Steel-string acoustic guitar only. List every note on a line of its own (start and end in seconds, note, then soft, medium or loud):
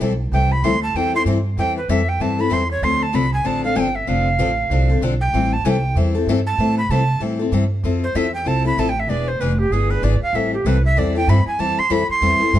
0.01 0.11 E3 medium
0.01 0.12 G3 medium
0.01 0.12 C4 medium
0.01 0.12 E4 loud
0.01 0.12 A4 medium
0.33 0.52 E3 medium
0.33 0.52 G3 medium
0.33 0.53 C4 medium
0.33 0.53 E4 medium
0.33 0.53 A4 medium
0.64 0.74 E3 medium
0.64 0.74 G3 medium
0.64 0.75 C4 medium
0.64 0.75 E4 medium
0.64 0.75 A4 medium
0.95 1.13 E3 medium
0.95 1.13 G3 medium
0.95 1.13 C4 medium
0.95 1.13 E4 medium
0.95 1.13 A4 medium
1.14 1.26 C4 soft
1.14 1.26 E4 soft
1.14 1.26 A4 medium
1.26 1.37 E3 medium
1.26 1.37 G3 medium
1.26 1.37 C4 medium
1.26 1.37 E4 medium
1.26 1.37 A4 loud
1.58 1.77 E3 medium
1.58 1.77 G3 medium
1.58 1.78 C4 medium
1.58 1.78 E4 medium
1.58 1.78 A4 medium
1.89 2.00 E3 medium
1.89 2.00 G3 medium
1.89 2.00 C4 loud
1.89 2.00 E4 medium
1.89 2.00 A4 loud
2.20 2.38 E3 medium
2.20 2.38 G3 medium
2.20 2.38 C4 medium
2.20 2.38 E4 medium
2.20 2.37 A4 medium
2.38 2.50 C4 soft
2.38 2.50 E4 medium
2.38 2.50 A4 medium
2.50 2.61 E3 medium
2.50 2.61 G3 medium
2.50 2.62 C4 medium
2.50 2.62 E4 medium
2.50 2.62 A4 medium
2.83 3.02 D3 medium
2.83 3.03 F3 medium
2.83 3.03 C4 medium
2.83 3.03 D4 medium
2.83 3.03 A4 medium
3.13 3.24 D3 medium
3.13 3.24 F3 medium
3.13 3.25 C4 loud
3.13 3.25 D4 loud
3.13 3.25 A4 medium
3.44 3.62 D3 medium
3.44 3.63 F3 medium
3.44 3.63 C4 medium
3.44 3.63 D4 medium
3.44 3.63 A4 medium
3.64 3.75 C4 medium
3.64 3.75 D4 medium
3.64 3.75 A4 medium
3.75 3.87 D3 medium
3.75 3.87 F3 medium
3.75 3.87 C4 medium
3.75 3.87 D4 medium
3.75 3.87 A4 medium
4.07 4.27 D3 medium
4.07 4.27 F3 medium
4.07 4.27 C4 medium
4.07 4.28 D4 medium
4.07 4.28 A4 medium
4.39 4.50 D3 loud
4.39 4.50 F3 loud
4.39 4.50 C4 loud
4.39 4.50 D4 loud
4.39 4.50 A4 loud
4.71 4.89 D3 medium
4.71 4.89 F3 medium
4.71 4.89 C4 medium
4.71 4.89 D4 medium
4.71 4.88 A4 medium
4.89 5.02 C4 medium
4.89 5.02 D4 medium
4.89 5.01 A4 medium
5.02 5.13 D3 loud
5.02 5.13 F3 medium
5.02 5.13 C4 medium
5.02 5.13 D4 loud
5.02 5.13 A4 loud
5.33 5.53 E3 medium
5.33 5.53 G3 medium
5.33 5.53 C4 medium
5.33 5.54 E4 medium
5.33 5.53 A4 medium
5.65 5.75 E3 medium
5.65 5.75 G3 medium
5.65 5.76 C4 loud
5.65 5.76 E4 loud
5.65 5.76 A4 loud
5.96 6.14 E3 medium
5.96 6.14 G3 medium
5.96 6.14 C4 medium
5.96 6.14 E4 medium
5.96 6.13 A4 medium
6.15 6.28 C4 medium
6.15 6.27 E4 medium
6.15 6.27 A4 medium
6.29 6.38 E3 medium
6.29 6.39 G3 medium
6.29 6.39 C4 loud
6.29 6.39 E4 loud
6.29 6.39 A4 loud
6.59 6.78 E3 medium
6.59 6.78 G3 medium
6.59 6.79 C4 medium
6.59 6.79 E4 medium
6.59 6.79 A4 medium
6.90 7.01 E3 medium
6.90 7.01 G3 medium
6.90 7.01 C4 medium
6.90 7.01 E4 loud
6.90 7.01 A4 loud
7.20 7.39 E3 medium
7.20 7.39 G3 medium
7.20 7.39 C4 medium
7.20 7.39 E4 medium
7.20 7.38 A4 medium
7.39 7.52 C4 soft
7.39 7.51 E4 medium
7.39 7.52 A4 medium
7.52 7.63 E3 medium
7.52 7.63 G3 medium
7.52 7.63 C4 medium
7.52 7.63 E4 medium
7.52 7.64 A4 loud
7.84 8.03 F3 medium
7.84 8.04 C4 medium
7.84 8.04 E4 medium
7.84 8.04 A4 medium
8.15 8.26 F3 loud
8.15 8.26 C4 loud
8.15 8.26 E4 loud
8.15 8.26 A4 loud
8.45 8.64 F3 medium
8.45 8.64 C4 medium
8.45 8.64 E4 medium
8.45 8.63 A4 medium
8.64 8.77 C4 soft
8.64 8.77 E4 medium
8.64 8.77 A4 medium
8.78 8.88 F3 medium
8.78 8.89 C4 loud
8.78 8.89 E4 loud
8.78 8.89 A4 loud
9.09 9.29 E3 medium
9.09 9.29 B3 medium
9.09 9.29 D4 medium
9.09 9.29 G#4 medium
9.41 9.51 E3 medium
9.41 9.52 B3 medium
9.41 9.52 D4 loud
9.41 9.52 G#4 medium
9.72 9.90 E3 medium
9.72 9.90 B3 medium
9.72 9.90 D4 medium
9.72 9.89 G#4 medium
9.90 10.02 B3 soft
9.90 10.03 D4 medium
9.90 10.02 G#4 medium
10.03 10.14 E3 medium
10.03 10.14 B3 loud
10.03 10.14 D4 loud
10.03 10.14 G#4 medium
10.34 10.54 E3 medium
10.34 10.54 G3 medium
10.34 10.54 C4 medium
10.34 10.54 E4 medium
10.34 10.54 A4 medium
10.66 10.76 E3 medium
10.66 10.76 G3 loud
10.66 10.76 C4 medium
10.66 10.76 E4 medium
10.66 10.77 A4 loud
10.97 11.15 E3 medium
10.97 11.15 G3 medium
10.97 11.15 C4 medium
10.97 11.15 E4 medium
10.97 11.14 A4 medium
11.15 11.28 C4 medium
11.15 11.28 E4 medium
11.15 11.27 A4 medium
11.29 11.39 E3 medium
11.29 11.39 G3 medium
11.29 11.39 C4 medium
11.29 11.40 E4 loud
11.29 11.39 A4 medium
11.59 11.79 E3 medium
11.59 11.79 G3 medium
11.59 11.79 C4 medium
11.59 11.79 E4 medium
11.59 11.79 A4 medium
11.90 12.01 E3 loud
11.90 12.01 G3 loud
11.90 12.01 C4 loud
11.90 12.01 E4 loud
11.90 12.02 A4 loud
12.21 12.40 E3 medium
12.21 12.40 G3 medium
12.21 12.40 C4 medium
12.21 12.40 E4 medium
12.21 12.39 A4 medium
12.40 12.53 C4 soft
12.40 12.53 E4 medium
12.40 12.52 A4 medium
12.54 12.59 E3 medium
12.54 12.59 G3 loud
12.54 12.59 C4 loud
12.54 12.59 E4 loud
12.54 12.59 A4 loud